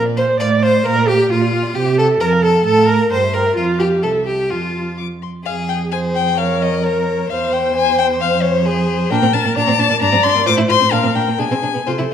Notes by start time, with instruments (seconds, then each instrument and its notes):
Already playing: cello A#2
0.05 violin D5
0.17 violin C5 F5, viola C5
0.29 violin D5
0.40 cello A2, violin D5 F5, viola D5
0.51 violin D#5
0.63 violin C5 F5, viola C5
0.74 violin D#5
0.85 cello A#2, violin A#4 F5, viola A#4
0.95 violin D5
1.07 violin G4 F5, viola G4
1.19 violin D5
1.30 cello A#2, viola F4, violin F4 F5
1.42 violin D5
1.53 violin F5
1.63 violin D5
1.75 cello C3, violin G4 G5, viola G4
1.86 violin E5
1.98 viola A4, violin A4 G5
2.10 violin E5
2.20 cello F2, violin A#4 A5, viola A#4
2.33 violin F5
2.43 viola A4, violin A4 A5
2.55 violin F5
2.65 cello A2, viola A4, violin A4 A5
2.78 violin F5
2.89 viola A#4, violin A#4 A5
3.00 violin F5
3.11 cello G2, viola C5, violin C5 G5
3.24 violin E5
3.34 viola A#4, violin A#4 G5
3.47 violin E5
3.56 cello F2, viola F4, violin F4 F5
3.79 viola G4, violin G4
4.03 cello C2, violin A4 E5, viola A4
4.26 violin G4, viola G4
4.50 cello F2, violin F4 A5, viola F4
4.98 violin D6
5.22 violin C6
5.45 cello F2, violin G#4 F5, viola G#4
5.69 violin G5
5.92 violin G#4 G#5, viola C5
6.15 violin G5
6.37 violin A#4 F5, viola C#5
6.62 violin D#5
6.84 viola A#4, violin C#5
7.29 cello E2, violin C5 F5, viola C5
7.53 violin G5
7.75 viola C5, violin G#5
7.98 violin G5
8.21 cello F2, violin F5
8.42 violin C#5
8.65 viola G#4, violin G#4 C5
9.10 cello A#2, violin D4 G5, viola A#4
9.22 cello A#2, violin C4
9.33 cello A#2, violin D4 A5
9.44 cello A#2, violin A#3
9.56 cello A#2, violin D4 A#5, viola D5
9.67 cello A#2, violin C4
9.78 cello A#2, violin D4 A5
9.89 cello A#2, violin A#3
10.01 cello G2, violin D4 A#5, viola D5
10.12 cello G2, violin C4
10.23 cello G2, violin D4 C6
10.35 cello G2, violin A#3
10.46 cello A2, violin F4 D6, viola C5
10.57 cello A2, violin E4
10.68 cello A2, violin F4 C6
10.80 cello A2, violin C4
10.91 cello A#2, violin D4 F5, viola A#4
11.03 cello A#2, violin C4
11.14 cello A#2, violin D4 G5
11.28 cello A#2, violin A#3
11.39 cello B2, violin D4 G#5, viola G#4
11.51 cello B2, violin C4
11.62 cello B2, violin D4
11.74 cello B2, violin B3
11.87 cello C3, violin F4 C5, viola A4
11.98 cello C3, violin E4